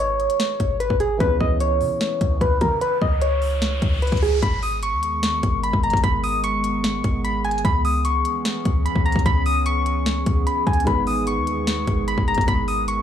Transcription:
Already playing: G#1 D#3 G#3 B3 G#4 B4
0.00 C#5
0.20 closed hi-hat
0.30 closed hi-hat
0.40 snare, closed hi-hat
0.60 G#1, kick, closed hi-hat
0.80 B4, closed hi-hat
0.90 G#1, kick
1.00 G#4, closed hi-hat
1.18 C#2 E3 B3 C#4 G#4 B4, kick, closed hi-hat, riser
1.23 B4
1.40 C#2 D#5, kick
1.60 C#5, closed hi-hat
1.81 C#3, open hi-hat
2.01 snare, closed hi-hat
2.21 C#2, kick, closed hi-hat
2.41 C#2 B4, kick, closed hi-hat
2.61 C#3 A#4, kick, closed hi-hat
2.81 B4, closed hi-hat
3.02 C#2 D#5, kick
3.22 C#5, closed hi-hat
3.42 open hi-hat
3.62 snare, closed hi-hat
3.82 C#2, kick, closed hi-hat
4.02 B4, closed hi-hat
4.07 closed hi-hat
4.12 C#2, kick, closed hi-hat
4.17 closed hi-hat
4.22 G#4, open hi-hat
4.42 G#1 D#3 G#3 B3 G#4 B5, kick, closed hi-hat
4.63 D#6, open hi-hat
4.83 C#6, closed hi-hat
4.93 D#2
5.03 closed hi-hat
5.23 snare, closed hi-hat
5.43 G#1, kick, closed hi-hat
5.63 B5, closed hi-hat
5.73 G#1, kick
5.83 A#5, closed hi-hat
5.90 G#1, kick, closed hi-hat
5.97 closed hi-hat
6.04 G#1 B5, kick, closed hi-hat
6.24 D#6, open hi-hat
6.44 C#6, closed hi-hat
6.64 closed hi-hat
6.84 snare, closed hi-hat
7.04 G#1, kick, closed hi-hat
7.24 B5, closed hi-hat
7.45 G#5, closed hi-hat
7.51 closed hi-hat
7.58 closed hi-hat
7.65 C#2 E3 C#4 B5, kick, closed hi-hat
7.85 D#6, open hi-hat
8.05 C#6, closed hi-hat
8.25 closed hi-hat
8.45 snare, closed hi-hat
8.65 C#2, kick, closed hi-hat
8.85 E2 B5, closed hi-hat
8.96 C#2, kick
9.06 A#5, closed hi-hat
9.12 C#2, kick, closed hi-hat
9.19 closed hi-hat
9.26 C#2 B5, kick, closed hi-hat
9.46 D#6, open hi-hat
9.66 C#6, closed hi-hat
9.86 closed hi-hat
10.06 snare, closed hi-hat
10.26 C#2, kick, closed hi-hat
10.47 B5, closed hi-hat
10.67 C#2 G#5, kick, closed hi-hat
10.73 closed hi-hat
10.80 D#3, closed hi-hat
10.85 G#1 D#3 G#3 B3 G#4 B4 B5, kick, closed hi-hat
11.07 D#6, open hi-hat
11.27 C#6, closed hi-hat
11.37 D#2
11.47 closed hi-hat
11.67 snare, closed hi-hat
11.87 G#1, kick, closed hi-hat
12.08 B5, closed hi-hat
12.18 G#1, kick
12.28 A#5, closed hi-hat
12.35 G#1, kick, closed hi-hat
12.41 closed hi-hat
12.48 G#1 B5, kick, closed hi-hat
12.68 D#6, open hi-hat
12.88 C#6, closed hi-hat

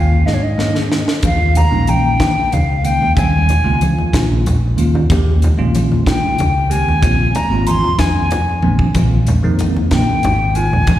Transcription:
Already playing: D#2 D#3 G#3 A#3 C#4 F4 F5
0.26 G#2 D#5, snare
0.34 C#5
0.43 D#5
0.58 G#2 D#3 G#3 A#3 C#4 G#4, snare
0.75 snare
0.92 snare
1.08 snare
1.23 D#2 D#3 G#3 A#3 C#4 F4 F5, kick, closed hi-hat, high conga
1.55 A#5, closed hi-hat, low conga
1.70 A#1 D#3 G#3 A#3 C#4 D#4, low conga
1.87 G5, closed hi-hat, high conga
2.20 D#3, kick, snare, closed hi-hat
2.37 low conga
2.52 C#2 F5, closed hi-hat, high conga, low conga
2.83 D#3 G#3 A#3 C#4 D#4 G5, closed hi-hat
3.02 D#2, low conga
3.14 D#2 D#3 G3 G#3 A#3 C#4 G#5, kick, closed hi-hat, high conga
3.49 closed hi-hat, low conga
3.64 C#2 D#3 G#3 A#3 C#4 F4, low conga
3.81 closed hi-hat, high conga
3.99 low conga
4.13 A#1, kick, snare, closed hi-hat
4.31 low conga
4.46 closed hi-hat, high conga, low conga
4.77 D#2 D#3 G#3 A#3 C#4 F4, closed hi-hat
4.95 low conga
5.10 D#2 D#3 G#3 A#3 C#4 G4, kick, closed hi-hat, high conga
5.42 closed hi-hat, low conga
5.57 A#1 D#3 G#3 A#3 C#4 F4, low conga
5.75 closed hi-hat, high conga
5.92 low conga
6.06 D#3 G5, kick, snare, closed hi-hat
6.24 low conga
6.38 C#2, closed hi-hat, high conga, low conga
6.69 D#3 G#3 A#3 C#4 G4 G#5, closed hi-hat
6.86 D#2, low conga
7.02 A#1 D#3 G#3 A#3 C4 F4, kick, closed hi-hat, high conga
7.35 A#5, closed hi-hat, low conga
7.50 G#1 D#3 G#3 A#3 C4 F4
7.67 C6, closed hi-hat, high conga
7.84 low conga
7.98 F2 G#5, kick, snare, closed hi-hat
8.31 closed hi-hat, high conga, low conga
8.48 low conga
8.62 A#1 D#3 G#3 A#3 C4 D4, high tom
8.79 kick
8.95 A#1 D#3 G#3 A#3 C4 F4, kick, closed hi-hat, high conga
9.27 closed hi-hat, low conga
9.43 F2 D#3 G#3 A#3 C4 D#4, low conga
9.59 closed hi-hat, high conga
9.77 low conga
9.91 A#2 G5, kick, snare, closed hi-hat
10.09 low conga
10.23 G#1, closed hi-hat, high conga, low conga
10.55 D#3 G#3 A#3 C4 F4 G#5, closed hi-hat
10.71 A#1, low conga
10.87 A#1 D#3 G#3 A#3 C4 D#4, kick, closed hi-hat, high conga

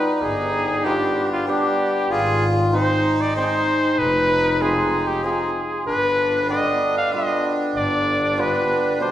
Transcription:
Already playing: G3 D#4 B4
0.15 B4
0.22 G1 G#4
0.84 G3 B3 D4 F4 G4
1.32 F4
1.47 G3 B3 D4 G4
2.09 G#1 F4 G#4
2.72 G#3 C4 D#4 C5
3.21 D5
3.36 G#3 C4 D#4 C5
3.98 F1 D#4 B4
4.60 G#3 C4 F4 G#4
5.07 G4
5.23 G#3 C4 F4 G#4
5.86 G1 D4 B4
6.49 D3 G3 B3 D#5
6.97 F5
7.12 G3 B3 F4 D#5
7.75 G1 D5
8.36 G3 B3 F4 B4
9.00 B2 G3 D4 C5

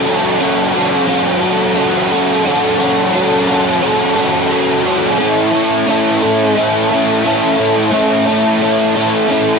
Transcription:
Already playing: F#3
0.04 C#4 F#4 A4
0.39 F#3 C#4 F#4 A4
0.73 C#4 F#4 A4
1.07 F#3 C#4 F#4 A4
1.41 C#4 F#4 A4
1.75 F#3 C#4 F#4 A4
2.10 C#4 F#4 A4
2.44 F#3 C#4 F#4 A4
2.79 C#4 F#4 A4
3.13 F#3 C#4 F#4 A4
3.47 C#4 F#4 A4
3.81 F#3 C#4 F#4 A4
4.15 C#4 F#4 A4
4.50 F#3 C#4 F#4 A4
4.84 C#4 F#4 A4
5.18 A3 C#4 E4 A4
5.52 C#4 E4 A4
5.87 A3 C#4 E4 A4
6.22 C#4 E4 A4
6.55 A3 C#4 E4 A4
6.91 C#4 E4 A4
7.24 A3 C#4 E4 A4
7.57 C#4 E4 A4
7.92 A3 C#4 E4 A4
8.26 C#4 E4 A4
8.61 A3 C#4 E4 A4
8.95 C#4 E4 A4
9.28 A3 C#4 E4 A4

